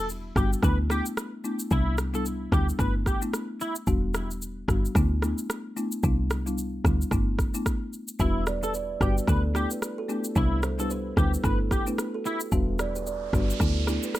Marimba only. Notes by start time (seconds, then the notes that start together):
0.36 G3 B3 D4 F#4
0.63 A3 B3 D4 E4
0.90 A3 B3 D4 E4
1.44 A3 B3 D4 E4
1.71 G3 B3 D4 E4
2.13 G3 B3 D4 E4
2.52 G3 B3 D4 E4
2.79 A3 B3 D4 E4
3.22 A3 B3 D4 E4
3.87 G3 B3 D4 F#4
4.68 G3 B3 D4 F#4
4.95 A3 B3 D4 E4
5.22 A3 B3 D4 E4
5.76 A3 B3 D4 E4
6.03 G3 B3 D4 E4
6.46 G3 B3 D4 E4
6.84 G3 B3 D4 E4
7.11 A3 B3 D4 E4
7.54 A3 B3 D4 E4
8.19 G3 B3 D4 F#4
9.01 G3 B3 D4 F#4
9.28 A3 B3 D4 E4
9.55 A3 B3 D4 E4
10.09 A3 B3 D4 E4
10.36 G3 B3 D4 E4
10.78 G3 B3 D4 E4
11.17 G3 B3 D4 E4
11.44 A3 B3 D4 E4
11.86 A3 B3 D4 E4
12.52 G3 B3 D4 F#4
13.33 G3 B3 D4 F#4
13.60 A3 B3 D4 E4
13.87 A3 B3 D4 E4